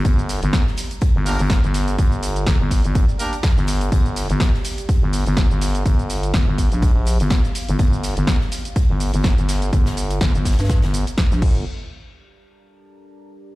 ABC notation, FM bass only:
X:1
M:4/4
L:1/16
Q:"Swing 16ths" 1/4=124
K:Gm
V:1 name="FM bass" clef=bass
G,,,3 G,,,2 z4 G,,,2 G,,,2 G,,,3 | G,,,4 G,,, G,,,2 G,,,2 z4 G,,,3 | G,,,3 G,,,2 z4 G,,,2 G,,,2 G,,,3 | G,,,4 G,,, G,,,2 B,,,4 G,,,2 z2 G,,, |
G,,,3 G,,,2 z4 G,,,2 G,,,2 G,,,3 | G,,,4 G,,, G,,,2 G,,2 G,,,2 z2 B,,, G,,,2 | z16 |]